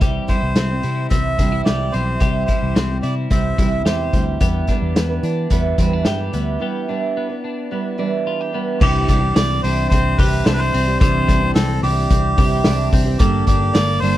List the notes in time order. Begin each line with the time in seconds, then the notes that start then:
Already playing: C2 C4
0.01 E3 G3 C4 E4 G4, kick, closed hi-hat
0.27 E3 G3 C4 E4 C5, kick, snare, closed hi-hat
0.43 C2
0.55 C2 C4, snare, closed hi-hat
0.71 G3 C4 E4
0.83 C3 E4, closed hi-hat
1.10 C2 E3 G3 C4 E4 E5, kick, closed hi-hat
1.39 C2 C3 E3 G3 C4 D4 E4, kick, closed hi-hat
1.52 E4
1.65 C2 G4 D5, snare, closed hi-hat
1.92 B1 E3 G3 C4 C5, closed hi-hat
1.96 E4
2.20 C2 E3 G3 C4 E4 G4, kick, closed hi-hat
2.45 E3 G3 E4 C5, kick, closed hi-hat
2.49 C4 E4
2.63 C2
2.76 C2 C4, snare, closed hi-hat
2.89 G3 C4 E4
3.02 C3 E4 D5, closed hi-hat
3.30 C2 E3 G3 C4 E4 E5, kick, closed hi-hat
3.58 C2 C3 E3 G3 C4 E4, kick, closed hi-hat
3.85 E2 G4 C5, snare, closed hi-hat
4.13 D2 E3 G3 C4 E4, kick, closed hi-hat
4.40 E2 G3 B3 D4 E4 G4 B4, kick, closed hi-hat
4.67 G3 D4 E4 B4, kick, snare, closed hi-hat
4.82 E2
4.96 E2 B3, snare, closed hi-hat
5.09 D4 E4 B4
5.23 E3 D4, closed hi-hat
5.50 E2 G3 B3 D4 E4 B4, kick, closed hi-hat
5.77 E2 E3 G3 C4 D4 E4 B4, kick, closed hi-hat
5.93 D4
6.05 G2 G4, snare, closed hi-hat
6.32 D2 G3 B3 D4 E4 B4, closed hi-hat
6.59 G3 B3 D4 E4 G4 B4
6.88 G3 D4 E4 B4
7.17 B3
7.29 D4 E4 B4
7.44 D4
7.71 G3 B3 D4 E4 B4
7.98 E3 G3 D4 E4 B4
8.27 F4
8.41 G4
8.53 G3 B3 D4 E4 B4
8.80 C2 C3 E3 C4 D4 G4, kick, crash
9.08 C2 D4 G4, kick, snare, hi-hat pedal, open hi-hat
9.21 C4 D4 G4
9.35 C2 C4 D5, snare, hi-hat pedal, open hi-hat
9.63 C2 E3 C4 D4 G4 C5, hi-hat pedal, open hi-hat
9.89 C2 C4 C5, kick, hi-hat pedal, open hi-hat
10.17 C2 E3 C4 D4 G4 B4, kick, hi-hat pedal, open hi-hat
10.44 C2 E3 C4 D4 G4 C5, snare, hi-hat pedal, open hi-hat
10.53 B4
10.59 C5
10.74 C2 C4, hi-hat pedal, open hi-hat
10.87 C4 D4 G4
11.00 C2 C3 E3 C4 D4 G4 C5, kick, hi-hat pedal, open hi-hat
11.28 C2 D4, kick, snare, hi-hat pedal, open hi-hat
11.41 C4 D4 G4
11.55 C2 C4 A4, snare, hi-hat pedal, open hi-hat
11.82 C2 E3 C4 D4 G4, hi-hat pedal, open hi-hat
12.10 C2 C4, kick, hi-hat pedal, open hi-hat
12.37 C2 E3 C4 D4 G4, kick, hi-hat pedal, open hi-hat
12.64 C2 E3 C4 D4 G4, snare, hi-hat pedal, open hi-hat
12.93 C2 C4, kick, hi-hat pedal, open hi-hat
13.05 C4 D4 G4
13.19 G1 G3 A#3 D4 G4 A4, kick, hi-hat pedal, open hi-hat
13.47 G1 D4 G4, kick, hi-hat pedal, open hi-hat
13.59 A#3 D4 A4
13.73 G1 A#3 D5, snare, hi-hat pedal, open hi-hat
14.00 G1 G3 A#3 D4 A4 C5, hi-hat pedal, open hi-hat